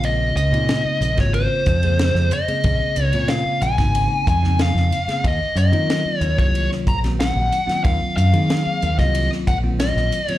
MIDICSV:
0, 0, Header, 1, 6, 480
1, 0, Start_track
1, 0, Tempo, 650054
1, 29, Time_signature, 4, 2, 24, 8
1, 7665, End_track
2, 0, Start_track
2, 0, Title_t, "Lead electric guitar"
2, 0, Program_c, 0, 29
2, 35, Note_on_c, 0, 75, 80
2, 260, Note_off_c, 0, 75, 0
2, 269, Note_on_c, 0, 75, 83
2, 886, Note_off_c, 0, 75, 0
2, 889, Note_on_c, 0, 73, 82
2, 990, Note_off_c, 0, 73, 0
2, 993, Note_on_c, 0, 72, 82
2, 1718, Note_off_c, 0, 72, 0
2, 1721, Note_on_c, 0, 75, 80
2, 2238, Note_off_c, 0, 75, 0
2, 2238, Note_on_c, 0, 73, 80
2, 2430, Note_off_c, 0, 73, 0
2, 2433, Note_on_c, 0, 77, 83
2, 2654, Note_off_c, 0, 77, 0
2, 2676, Note_on_c, 0, 80, 92
2, 3154, Note_off_c, 0, 80, 0
2, 3163, Note_on_c, 0, 80, 84
2, 3380, Note_off_c, 0, 80, 0
2, 3411, Note_on_c, 0, 77, 83
2, 3894, Note_off_c, 0, 77, 0
2, 3897, Note_on_c, 0, 75, 84
2, 4115, Note_off_c, 0, 75, 0
2, 4123, Note_on_c, 0, 75, 88
2, 4566, Note_off_c, 0, 75, 0
2, 4566, Note_on_c, 0, 73, 88
2, 4716, Note_off_c, 0, 73, 0
2, 4716, Note_on_c, 0, 73, 83
2, 4937, Note_off_c, 0, 73, 0
2, 5081, Note_on_c, 0, 82, 82
2, 5144, Note_off_c, 0, 82, 0
2, 5316, Note_on_c, 0, 78, 88
2, 5785, Note_off_c, 0, 78, 0
2, 5788, Note_on_c, 0, 77, 90
2, 6022, Note_off_c, 0, 77, 0
2, 6031, Note_on_c, 0, 77, 89
2, 6637, Note_off_c, 0, 77, 0
2, 6640, Note_on_c, 0, 75, 78
2, 6859, Note_off_c, 0, 75, 0
2, 6997, Note_on_c, 0, 78, 85
2, 7061, Note_off_c, 0, 78, 0
2, 7235, Note_on_c, 0, 75, 85
2, 7604, Note_off_c, 0, 75, 0
2, 7604, Note_on_c, 0, 73, 85
2, 7665, Note_off_c, 0, 73, 0
2, 7665, End_track
3, 0, Start_track
3, 0, Title_t, "Tine electric piano"
3, 0, Program_c, 1, 4
3, 0, Note_on_c, 1, 49, 69
3, 0, Note_on_c, 1, 56, 67
3, 0, Note_on_c, 1, 58, 66
3, 0, Note_on_c, 1, 60, 64
3, 0, Note_on_c, 1, 65, 75
3, 305, Note_off_c, 1, 49, 0
3, 305, Note_off_c, 1, 56, 0
3, 305, Note_off_c, 1, 58, 0
3, 306, Note_off_c, 1, 60, 0
3, 306, Note_off_c, 1, 65, 0
3, 390, Note_on_c, 1, 56, 69
3, 391, Note_on_c, 1, 49, 78
3, 392, Note_on_c, 1, 58, 68
3, 393, Note_on_c, 1, 63, 84
3, 395, Note_on_c, 1, 60, 70
3, 799, Note_off_c, 1, 56, 0
3, 800, Note_off_c, 1, 49, 0
3, 800, Note_off_c, 1, 58, 0
3, 801, Note_off_c, 1, 63, 0
3, 802, Note_off_c, 1, 60, 0
3, 862, Note_on_c, 1, 58, 64
3, 864, Note_on_c, 1, 56, 67
3, 864, Note_on_c, 1, 60, 70
3, 865, Note_on_c, 1, 49, 70
3, 865, Note_on_c, 1, 65, 78
3, 1275, Note_off_c, 1, 58, 0
3, 1276, Note_off_c, 1, 56, 0
3, 1276, Note_off_c, 1, 60, 0
3, 1277, Note_off_c, 1, 49, 0
3, 1277, Note_off_c, 1, 65, 0
3, 1357, Note_on_c, 1, 58, 57
3, 1357, Note_on_c, 1, 60, 58
3, 1360, Note_on_c, 1, 68, 65
3, 1361, Note_on_c, 1, 49, 59
3, 1362, Note_on_c, 1, 56, 58
3, 1763, Note_off_c, 1, 58, 0
3, 1763, Note_off_c, 1, 60, 0
3, 1764, Note_off_c, 1, 68, 0
3, 1765, Note_off_c, 1, 49, 0
3, 1765, Note_off_c, 1, 56, 0
3, 1830, Note_on_c, 1, 60, 59
3, 1831, Note_on_c, 1, 58, 57
3, 1834, Note_on_c, 1, 49, 62
3, 1834, Note_on_c, 1, 56, 59
3, 1834, Note_on_c, 1, 68, 69
3, 2240, Note_off_c, 1, 58, 0
3, 2240, Note_off_c, 1, 60, 0
3, 2242, Note_off_c, 1, 49, 0
3, 2242, Note_off_c, 1, 56, 0
3, 2242, Note_off_c, 1, 68, 0
3, 2323, Note_on_c, 1, 49, 75
3, 2323, Note_on_c, 1, 56, 68
3, 2323, Note_on_c, 1, 60, 67
3, 2325, Note_on_c, 1, 58, 66
3, 2325, Note_on_c, 1, 65, 86
3, 2726, Note_off_c, 1, 49, 0
3, 2726, Note_off_c, 1, 56, 0
3, 2726, Note_off_c, 1, 60, 0
3, 2727, Note_off_c, 1, 58, 0
3, 2727, Note_off_c, 1, 65, 0
3, 2796, Note_on_c, 1, 49, 72
3, 2797, Note_on_c, 1, 60, 64
3, 2798, Note_on_c, 1, 56, 64
3, 2800, Note_on_c, 1, 58, 65
3, 2801, Note_on_c, 1, 63, 79
3, 3203, Note_off_c, 1, 49, 0
3, 3204, Note_off_c, 1, 56, 0
3, 3204, Note_off_c, 1, 60, 0
3, 3205, Note_off_c, 1, 58, 0
3, 3206, Note_off_c, 1, 63, 0
3, 3267, Note_on_c, 1, 49, 61
3, 3268, Note_on_c, 1, 63, 67
3, 3272, Note_on_c, 1, 56, 52
3, 3272, Note_on_c, 1, 60, 54
3, 3274, Note_on_c, 1, 58, 52
3, 3679, Note_off_c, 1, 49, 0
3, 3680, Note_off_c, 1, 63, 0
3, 3681, Note_off_c, 1, 56, 0
3, 3681, Note_off_c, 1, 60, 0
3, 3682, Note_off_c, 1, 58, 0
3, 3750, Note_on_c, 1, 56, 53
3, 3753, Note_on_c, 1, 68, 68
3, 3754, Note_on_c, 1, 49, 59
3, 3754, Note_on_c, 1, 58, 59
3, 3757, Note_on_c, 1, 60, 53
3, 3870, Note_off_c, 1, 56, 0
3, 3871, Note_off_c, 1, 68, 0
3, 3872, Note_off_c, 1, 49, 0
3, 3872, Note_off_c, 1, 58, 0
3, 3873, Note_off_c, 1, 60, 0
3, 4224, Note_on_c, 1, 58, 69
3, 4224, Note_on_c, 1, 60, 68
3, 4225, Note_on_c, 1, 51, 72
3, 4225, Note_on_c, 1, 54, 67
3, 4229, Note_on_c, 1, 65, 81
3, 4638, Note_off_c, 1, 51, 0
3, 4638, Note_off_c, 1, 54, 0
3, 4638, Note_off_c, 1, 58, 0
3, 4638, Note_off_c, 1, 60, 0
3, 4640, Note_off_c, 1, 65, 0
3, 4706, Note_on_c, 1, 54, 68
3, 4707, Note_on_c, 1, 48, 66
3, 4707, Note_on_c, 1, 58, 64
3, 4710, Note_on_c, 1, 51, 72
3, 4710, Note_on_c, 1, 65, 76
3, 5119, Note_off_c, 1, 54, 0
3, 5120, Note_off_c, 1, 48, 0
3, 5120, Note_off_c, 1, 58, 0
3, 5121, Note_off_c, 1, 51, 0
3, 5121, Note_off_c, 1, 65, 0
3, 5197, Note_on_c, 1, 51, 61
3, 5198, Note_on_c, 1, 54, 55
3, 5198, Note_on_c, 1, 58, 58
3, 5199, Note_on_c, 1, 60, 56
3, 5203, Note_on_c, 1, 66, 65
3, 5605, Note_off_c, 1, 51, 0
3, 5605, Note_off_c, 1, 54, 0
3, 5605, Note_off_c, 1, 58, 0
3, 5606, Note_off_c, 1, 60, 0
3, 5607, Note_off_c, 1, 66, 0
3, 5662, Note_on_c, 1, 51, 65
3, 5662, Note_on_c, 1, 60, 54
3, 5665, Note_on_c, 1, 54, 58
3, 5667, Note_on_c, 1, 65, 69
3, 5669, Note_on_c, 1, 58, 56
3, 6077, Note_off_c, 1, 51, 0
3, 6077, Note_off_c, 1, 60, 0
3, 6079, Note_off_c, 1, 54, 0
3, 6080, Note_off_c, 1, 65, 0
3, 6081, Note_off_c, 1, 58, 0
3, 6150, Note_on_c, 1, 58, 68
3, 6150, Note_on_c, 1, 60, 68
3, 6151, Note_on_c, 1, 54, 72
3, 6153, Note_on_c, 1, 68, 82
3, 6154, Note_on_c, 1, 51, 78
3, 6561, Note_off_c, 1, 58, 0
3, 6561, Note_off_c, 1, 60, 0
3, 6562, Note_off_c, 1, 54, 0
3, 6562, Note_off_c, 1, 68, 0
3, 6563, Note_off_c, 1, 51, 0
3, 6633, Note_on_c, 1, 60, 67
3, 6636, Note_on_c, 1, 51, 70
3, 6636, Note_on_c, 1, 65, 84
3, 6637, Note_on_c, 1, 54, 68
3, 6637, Note_on_c, 1, 58, 66
3, 7042, Note_off_c, 1, 60, 0
3, 7043, Note_off_c, 1, 51, 0
3, 7044, Note_off_c, 1, 54, 0
3, 7044, Note_off_c, 1, 58, 0
3, 7044, Note_off_c, 1, 65, 0
3, 7111, Note_on_c, 1, 51, 59
3, 7114, Note_on_c, 1, 54, 56
3, 7114, Note_on_c, 1, 58, 60
3, 7114, Note_on_c, 1, 60, 60
3, 7116, Note_on_c, 1, 65, 72
3, 7520, Note_off_c, 1, 51, 0
3, 7522, Note_off_c, 1, 54, 0
3, 7522, Note_off_c, 1, 58, 0
3, 7522, Note_off_c, 1, 60, 0
3, 7523, Note_off_c, 1, 65, 0
3, 7595, Note_on_c, 1, 54, 58
3, 7597, Note_on_c, 1, 60, 61
3, 7599, Note_on_c, 1, 51, 60
3, 7599, Note_on_c, 1, 58, 58
3, 7600, Note_on_c, 1, 65, 67
3, 7665, Note_off_c, 1, 51, 0
3, 7665, Note_off_c, 1, 54, 0
3, 7665, Note_off_c, 1, 58, 0
3, 7665, Note_off_c, 1, 60, 0
3, 7665, Note_off_c, 1, 65, 0
3, 7665, End_track
4, 0, Start_track
4, 0, Title_t, "Fingered electric bass"
4, 0, Program_c, 2, 33
4, 0, Note_on_c, 2, 34, 84
4, 239, Note_off_c, 2, 34, 0
4, 263, Note_on_c, 2, 37, 79
4, 375, Note_off_c, 2, 37, 0
4, 385, Note_on_c, 2, 46, 74
4, 605, Note_off_c, 2, 46, 0
4, 742, Note_on_c, 2, 34, 79
4, 855, Note_off_c, 2, 34, 0
4, 871, Note_on_c, 2, 32, 75
4, 1088, Note_off_c, 2, 32, 0
4, 1230, Note_on_c, 2, 41, 77
4, 1560, Note_off_c, 2, 41, 0
4, 1583, Note_on_c, 2, 41, 80
4, 1694, Note_off_c, 2, 41, 0
4, 1953, Note_on_c, 2, 34, 100
4, 2061, Note_off_c, 2, 34, 0
4, 2191, Note_on_c, 2, 37, 82
4, 2300, Note_off_c, 2, 37, 0
4, 2316, Note_on_c, 2, 46, 72
4, 2531, Note_off_c, 2, 46, 0
4, 2669, Note_on_c, 2, 34, 74
4, 2779, Note_off_c, 2, 34, 0
4, 2793, Note_on_c, 2, 32, 76
4, 3010, Note_off_c, 2, 32, 0
4, 3153, Note_on_c, 2, 41, 76
4, 3483, Note_off_c, 2, 41, 0
4, 3505, Note_on_c, 2, 41, 79
4, 3616, Note_off_c, 2, 41, 0
4, 3870, Note_on_c, 2, 39, 99
4, 3980, Note_off_c, 2, 39, 0
4, 4102, Note_on_c, 2, 42, 77
4, 4216, Note_off_c, 2, 42, 0
4, 4226, Note_on_c, 2, 51, 74
4, 4446, Note_off_c, 2, 51, 0
4, 4584, Note_on_c, 2, 39, 79
4, 4697, Note_off_c, 2, 39, 0
4, 4714, Note_on_c, 2, 36, 77
4, 4931, Note_off_c, 2, 36, 0
4, 5071, Note_on_c, 2, 34, 77
4, 5403, Note_off_c, 2, 34, 0
4, 5429, Note_on_c, 2, 34, 78
4, 5539, Note_off_c, 2, 34, 0
4, 5794, Note_on_c, 2, 39, 100
4, 5903, Note_off_c, 2, 39, 0
4, 6030, Note_on_c, 2, 42, 85
4, 6141, Note_off_c, 2, 42, 0
4, 6152, Note_on_c, 2, 51, 74
4, 6370, Note_off_c, 2, 51, 0
4, 6518, Note_on_c, 2, 39, 78
4, 6625, Note_off_c, 2, 39, 0
4, 6632, Note_on_c, 2, 36, 77
4, 6850, Note_off_c, 2, 36, 0
4, 6993, Note_on_c, 2, 34, 81
4, 7323, Note_off_c, 2, 34, 0
4, 7352, Note_on_c, 2, 34, 81
4, 7459, Note_off_c, 2, 34, 0
4, 7665, End_track
5, 0, Start_track
5, 0, Title_t, "Muted fingered electric bass strokes"
5, 625, Note_on_c, 9, 29, 35
5, 699, Note_off_c, 9, 29, 0
5, 1830, Note_on_c, 9, 29, 32
5, 1904, Note_off_c, 9, 29, 0
5, 2548, Note_on_c, 9, 29, 34
5, 2622, Note_off_c, 9, 29, 0
5, 3743, Note_on_c, 9, 29, 31
5, 3817, Note_off_c, 9, 29, 0
5, 4468, Note_on_c, 9, 29, 33
5, 4542, Note_off_c, 9, 29, 0
5, 5666, Note_on_c, 9, 29, 32
5, 5740, Note_off_c, 9, 29, 0
5, 6395, Note_on_c, 9, 29, 33
5, 6469, Note_off_c, 9, 29, 0
5, 7592, Note_on_c, 9, 29, 31
5, 7665, Note_off_c, 9, 29, 0
5, 7665, End_track
6, 0, Start_track
6, 0, Title_t, "Drums"
6, 26, Note_on_c, 9, 51, 71
6, 100, Note_off_c, 9, 51, 0
6, 272, Note_on_c, 9, 44, 74
6, 272, Note_on_c, 9, 51, 56
6, 346, Note_off_c, 9, 44, 0
6, 346, Note_off_c, 9, 51, 0
6, 396, Note_on_c, 9, 51, 53
6, 470, Note_off_c, 9, 51, 0
6, 507, Note_on_c, 9, 51, 67
6, 510, Note_on_c, 9, 38, 92
6, 581, Note_off_c, 9, 51, 0
6, 584, Note_off_c, 9, 38, 0
6, 750, Note_on_c, 9, 44, 77
6, 750, Note_on_c, 9, 51, 50
6, 824, Note_off_c, 9, 44, 0
6, 824, Note_off_c, 9, 51, 0
6, 867, Note_on_c, 9, 51, 51
6, 870, Note_on_c, 9, 38, 30
6, 872, Note_on_c, 9, 36, 69
6, 941, Note_off_c, 9, 51, 0
6, 944, Note_off_c, 9, 38, 0
6, 946, Note_off_c, 9, 36, 0
6, 988, Note_on_c, 9, 51, 70
6, 1062, Note_off_c, 9, 51, 0
6, 1226, Note_on_c, 9, 44, 78
6, 1226, Note_on_c, 9, 51, 52
6, 1230, Note_on_c, 9, 36, 77
6, 1300, Note_off_c, 9, 44, 0
6, 1300, Note_off_c, 9, 51, 0
6, 1304, Note_off_c, 9, 36, 0
6, 1349, Note_on_c, 9, 51, 55
6, 1423, Note_off_c, 9, 51, 0
6, 1470, Note_on_c, 9, 51, 69
6, 1473, Note_on_c, 9, 38, 98
6, 1544, Note_off_c, 9, 51, 0
6, 1547, Note_off_c, 9, 38, 0
6, 1590, Note_on_c, 9, 38, 30
6, 1664, Note_off_c, 9, 38, 0
6, 1706, Note_on_c, 9, 44, 80
6, 1706, Note_on_c, 9, 51, 58
6, 1780, Note_off_c, 9, 44, 0
6, 1780, Note_off_c, 9, 51, 0
6, 1833, Note_on_c, 9, 51, 57
6, 1907, Note_off_c, 9, 51, 0
6, 1946, Note_on_c, 9, 51, 68
6, 1951, Note_on_c, 9, 36, 96
6, 2020, Note_off_c, 9, 51, 0
6, 2025, Note_off_c, 9, 36, 0
6, 2185, Note_on_c, 9, 44, 81
6, 2185, Note_on_c, 9, 51, 59
6, 2259, Note_off_c, 9, 44, 0
6, 2259, Note_off_c, 9, 51, 0
6, 2309, Note_on_c, 9, 51, 60
6, 2382, Note_off_c, 9, 51, 0
6, 2423, Note_on_c, 9, 51, 70
6, 2426, Note_on_c, 9, 38, 92
6, 2497, Note_off_c, 9, 51, 0
6, 2500, Note_off_c, 9, 38, 0
6, 2669, Note_on_c, 9, 44, 74
6, 2669, Note_on_c, 9, 51, 55
6, 2743, Note_off_c, 9, 44, 0
6, 2743, Note_off_c, 9, 51, 0
6, 2793, Note_on_c, 9, 36, 68
6, 2793, Note_on_c, 9, 51, 57
6, 2796, Note_on_c, 9, 38, 28
6, 2866, Note_off_c, 9, 51, 0
6, 2867, Note_off_c, 9, 36, 0
6, 2869, Note_off_c, 9, 38, 0
6, 2915, Note_on_c, 9, 51, 76
6, 2989, Note_off_c, 9, 51, 0
6, 3154, Note_on_c, 9, 36, 78
6, 3155, Note_on_c, 9, 44, 76
6, 3155, Note_on_c, 9, 51, 59
6, 3228, Note_off_c, 9, 36, 0
6, 3229, Note_off_c, 9, 44, 0
6, 3229, Note_off_c, 9, 51, 0
6, 3278, Note_on_c, 9, 38, 31
6, 3352, Note_off_c, 9, 38, 0
6, 3391, Note_on_c, 9, 51, 76
6, 3393, Note_on_c, 9, 38, 95
6, 3464, Note_off_c, 9, 51, 0
6, 3467, Note_off_c, 9, 38, 0
6, 3521, Note_on_c, 9, 38, 31
6, 3594, Note_off_c, 9, 38, 0
6, 3635, Note_on_c, 9, 44, 76
6, 3635, Note_on_c, 9, 51, 60
6, 3709, Note_off_c, 9, 44, 0
6, 3709, Note_off_c, 9, 51, 0
6, 3756, Note_on_c, 9, 51, 53
6, 3759, Note_on_c, 9, 38, 28
6, 3830, Note_off_c, 9, 51, 0
6, 3833, Note_off_c, 9, 38, 0
6, 3873, Note_on_c, 9, 36, 92
6, 3873, Note_on_c, 9, 51, 72
6, 3947, Note_off_c, 9, 36, 0
6, 3947, Note_off_c, 9, 51, 0
6, 4109, Note_on_c, 9, 44, 78
6, 4109, Note_on_c, 9, 51, 56
6, 4183, Note_off_c, 9, 44, 0
6, 4183, Note_off_c, 9, 51, 0
6, 4231, Note_on_c, 9, 51, 55
6, 4304, Note_off_c, 9, 51, 0
6, 4355, Note_on_c, 9, 51, 68
6, 4358, Note_on_c, 9, 38, 95
6, 4428, Note_off_c, 9, 51, 0
6, 4431, Note_off_c, 9, 38, 0
6, 4587, Note_on_c, 9, 44, 70
6, 4587, Note_on_c, 9, 51, 47
6, 4661, Note_off_c, 9, 44, 0
6, 4661, Note_off_c, 9, 51, 0
6, 4715, Note_on_c, 9, 36, 69
6, 4718, Note_on_c, 9, 51, 51
6, 4789, Note_off_c, 9, 36, 0
6, 4792, Note_off_c, 9, 51, 0
6, 4836, Note_on_c, 9, 51, 69
6, 4910, Note_off_c, 9, 51, 0
6, 4960, Note_on_c, 9, 38, 30
6, 5034, Note_off_c, 9, 38, 0
6, 5072, Note_on_c, 9, 36, 73
6, 5072, Note_on_c, 9, 44, 71
6, 5072, Note_on_c, 9, 51, 51
6, 5145, Note_off_c, 9, 44, 0
6, 5145, Note_off_c, 9, 51, 0
6, 5146, Note_off_c, 9, 36, 0
6, 5198, Note_on_c, 9, 51, 53
6, 5201, Note_on_c, 9, 38, 29
6, 5272, Note_off_c, 9, 51, 0
6, 5275, Note_off_c, 9, 38, 0
6, 5318, Note_on_c, 9, 51, 70
6, 5321, Note_on_c, 9, 38, 98
6, 5392, Note_off_c, 9, 51, 0
6, 5395, Note_off_c, 9, 38, 0
6, 5555, Note_on_c, 9, 44, 77
6, 5555, Note_on_c, 9, 51, 57
6, 5629, Note_off_c, 9, 44, 0
6, 5629, Note_off_c, 9, 51, 0
6, 5680, Note_on_c, 9, 51, 54
6, 5683, Note_on_c, 9, 38, 30
6, 5754, Note_off_c, 9, 51, 0
6, 5757, Note_off_c, 9, 38, 0
6, 5794, Note_on_c, 9, 36, 97
6, 5794, Note_on_c, 9, 51, 66
6, 5867, Note_off_c, 9, 51, 0
6, 5868, Note_off_c, 9, 36, 0
6, 6038, Note_on_c, 9, 44, 79
6, 6038, Note_on_c, 9, 51, 57
6, 6112, Note_off_c, 9, 44, 0
6, 6112, Note_off_c, 9, 51, 0
6, 6155, Note_on_c, 9, 51, 57
6, 6229, Note_off_c, 9, 51, 0
6, 6276, Note_on_c, 9, 51, 71
6, 6278, Note_on_c, 9, 38, 95
6, 6349, Note_off_c, 9, 51, 0
6, 6352, Note_off_c, 9, 38, 0
6, 6515, Note_on_c, 9, 44, 71
6, 6515, Note_on_c, 9, 51, 52
6, 6589, Note_off_c, 9, 44, 0
6, 6589, Note_off_c, 9, 51, 0
6, 6635, Note_on_c, 9, 36, 68
6, 6637, Note_on_c, 9, 51, 55
6, 6639, Note_on_c, 9, 38, 28
6, 6709, Note_off_c, 9, 36, 0
6, 6710, Note_off_c, 9, 51, 0
6, 6713, Note_off_c, 9, 38, 0
6, 6754, Note_on_c, 9, 51, 80
6, 6828, Note_off_c, 9, 51, 0
6, 6883, Note_on_c, 9, 38, 30
6, 6957, Note_off_c, 9, 38, 0
6, 6995, Note_on_c, 9, 36, 77
6, 6995, Note_on_c, 9, 44, 77
6, 6995, Note_on_c, 9, 51, 60
6, 7068, Note_off_c, 9, 36, 0
6, 7068, Note_off_c, 9, 44, 0
6, 7068, Note_off_c, 9, 51, 0
6, 7233, Note_on_c, 9, 51, 78
6, 7236, Note_on_c, 9, 38, 94
6, 7307, Note_off_c, 9, 51, 0
6, 7310, Note_off_c, 9, 38, 0
6, 7357, Note_on_c, 9, 38, 30
6, 7431, Note_off_c, 9, 38, 0
6, 7474, Note_on_c, 9, 44, 80
6, 7474, Note_on_c, 9, 51, 64
6, 7548, Note_off_c, 9, 44, 0
6, 7548, Note_off_c, 9, 51, 0
6, 7594, Note_on_c, 9, 51, 59
6, 7665, Note_off_c, 9, 51, 0
6, 7665, End_track
0, 0, End_of_file